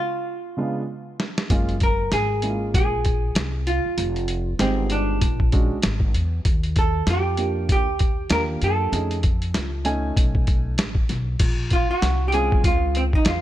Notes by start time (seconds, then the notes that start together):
Already playing: F4
0.57 C#3 G#3 B3 D4 F4
1.20 snare
1.38 snare
1.50 F#1 G#3 A#3 C#4 F4, kick, closed hi-hat
1.69 closed hi-hat
1.80 A#4, kick, closed hi-hat
2.12 G#1 G#4, snare, closed hi-hat
2.42 G#3 A#3 C#4 E4, closed hi-hat
2.50 F4
2.74 A#1 G#4, kick, closed hi-hat
3.05 kick, closed hi-hat
3.35 C2, snare, closed hi-hat
3.67 F4, closed hi-hat
3.85 muted upright bass stroke
3.98 F1, closed hi-hat
4.16 closed hi-hat
4.28 closed hi-hat
4.59 G1 D#3 G#3 C4 G4, snare, closed hi-hat
4.90 D4, closed hi-hat
5.21 A#1, kick, closed hi-hat
5.40 kick
5.52 G#3 C#4 D4 F#4, kick, closed hi-hat
5.71 muted upright bass stroke
5.82 G#1, snare, closed hi-hat
6.00 kick
6.14 E2, closed hi-hat
6.45 D#2, kick, closed hi-hat
6.63 closed hi-hat
6.76 A4, kick, closed hi-hat
7.07 F2 G4, snare, closed hi-hat
7.37 A#3 D4 F4 G4, closed hi-hat
7.69 D2 G4, kick, closed hi-hat
7.99 kick, closed hi-hat
8.30 D#2 A#3 D4 F4 G4 A#4, snare, closed hi-hat
8.62 F#2 A4, closed hi-hat
8.92 F2 A3 C#4 D#4 G#4, closed hi-hat
9.11 closed hi-hat
9.23 kick, closed hi-hat
9.42 closed hi-hat
9.54 C#2, snare, closed hi-hat
9.85 A3 C#4 D#4 G#5, closed hi-hat
10.16 B1, kick, closed hi-hat
10.35 kick
10.47 kick, closed hi-hat
10.78 A1, snare, closed hi-hat
10.95 kick
11.09 B1, snare, closed hi-hat
11.39 A#1, kick, closed hi-hat, crash
11.70 F4, kick, closed hi-hat
11.89 F#4, muted upright bass stroke
12.02 C2, snare, closed hi-hat
12.28 G4
12.32 G#3 C4 C#4 F4 G#4, closed hi-hat
12.52 kick
12.64 C#2 F4, kick, closed hi-hat
12.95 C4, closed hi-hat
13.13 D#4, muted upright bass stroke, kick
13.25 E2 F4, snare, closed hi-hat